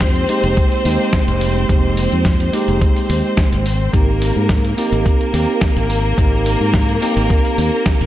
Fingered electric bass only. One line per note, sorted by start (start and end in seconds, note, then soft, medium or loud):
0.00 0.24 F2 medium
0.44 0.54 F1 medium
0.85 0.96 D#2 medium
1.28 1.64 F1 medium
1.69 2.06 F1 medium
2.12 2.48 F2 medium
2.68 2.78 F1 medium
3.10 3.21 D#2 medium
3.52 3.89 G#1 medium
3.94 4.31 G#1 medium
4.36 4.73 G#2 medium
4.92 5.03 G#1 medium
5.34 5.45 D#2 medium
5.76 6.13 G#1 medium
6.18 6.55 G#1 medium
6.61 6.97 G#2 medium
7.17 7.27 G#1 medium
7.58 7.69 D#2 medium
8.01 8.06 G#1 medium